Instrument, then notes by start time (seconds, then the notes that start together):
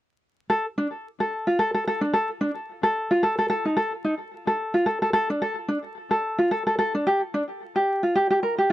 ukulele
0.50 A4
0.78 D4
1.20 A4
1.47 F4
1.59 A4
1.74 A4
1.87 A4
2.01 D4
2.13 A4
2.41 D4
2.83 A4
3.11 F4
3.23 A4
3.39 A4
3.50 A4
3.65 D#4
3.77 A4
4.04 D#4
4.47 A4
4.74 F4
4.86 A4
5.02 A4
5.13 A4
5.30 D4
5.42 A4
5.68 D4
6.11 A4
6.38 F4
6.51 A4
6.67 A4
6.79 A4
6.95 D4
7.07 G4
7.34 D4
7.76 G4
8.03 F4
8.15 G4
8.30 G4
8.43 A#4
8.58 G4